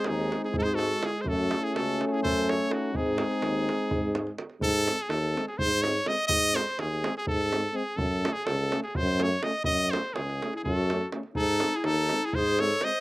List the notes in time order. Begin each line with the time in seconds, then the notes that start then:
Already playing: G#3 C4 G#4
0.04 D#2 G#4, davul high
0.10 D#4
0.32 davul high
0.44 G#4, davul high
0.51 E4, davul low
0.55 G#2 A4
0.61 D#4 C5
0.65 G#4, davul high
0.73 F#4 A4
0.79 davul high
1.03 E4 G#4, davul high
1.18 G#4 C5
1.24 F#2 A3 C#4 F#4 A4, davul low
1.51 davul high
1.61 E4 G#4, davul high
1.73 C#2 F#4 A4, davul high
2.01 davul high
2.07 F#4 A4
2.12 E4 G#4, davul high
2.22 F#2 A4 C5, davul low
2.49 A4 C#5, davul high
2.70 D#4 F#4, davul high
2.92 G#2 G#3 C4 D#4, davul low
2.96 G#4
3.06 davul high
3.18 davul high
3.31 davul high
3.42 D#2, davul high
3.69 davul high
3.90 G#2, davul low
4.15 davul high
4.27 davul high
4.38 davul high
4.50 davul high
4.61 G#2 A4, davul low
4.88 G#3 C4, davul high
5.00 G#4, davul high
5.09 D#2 A4, davul high
5.34 G#3 C4, davul high
5.48 G#4, davul high
5.58 G#2 C5, davul low
5.71 davul high
5.82 G#3 C4 C#5, davul high
6.06 G#3 C4 D#5, davul high
6.27 G#2 D#5, davul low
6.52 C4 C5, davul high
6.56 G#3
6.67 davul high
6.78 D#2 G#4, davul high
7.03 G#3 C4, davul high
7.17 G#4, davul high
7.27 G#2 A4, davul low
7.41 davul high
7.52 G#3 C4, davul high
7.73 G#3 C4 G#4
7.96 F#2 A4, davul low
8.22 A3 C#4, davul high
8.33 G#4, davul high
8.45 C#2 A4, davul high
8.71 A3 C#4, davul high
8.83 G#4, davul high
8.95 F#2 C5, davul low
9.08 davul high
9.18 A3 C#4, davul high
9.23 C#5
9.42 A3 C#4 D#5, davul high
9.64 F#2 D#5, davul low
9.79 davul high
9.91 A3 C#4 C5, davul high
10.05 davul high
10.14 C#2 G#4, davul high
10.30 davul high
10.42 A3 C#4, davul high
10.53 E4 G#4, davul high
10.64 F#2 F#4 A4, davul low
10.89 A3 C#4, davul high
11.01 davul high
11.12 A3 C#4, davul high
11.23 davul high
11.35 G#2 D#4 A4, davul low
11.60 G#3 C4, davul high
11.76 E4 G#4
11.84 D#2 D#4 A4, davul high
12.09 G#3 C4, davul high
12.22 E4 G#4, davul high
12.33 G#2 G#4 C5, davul low
12.48 davul high
12.59 G#3 C4 A4 C#5, davul high
12.81 G#3 C4 C5 D#5, davul high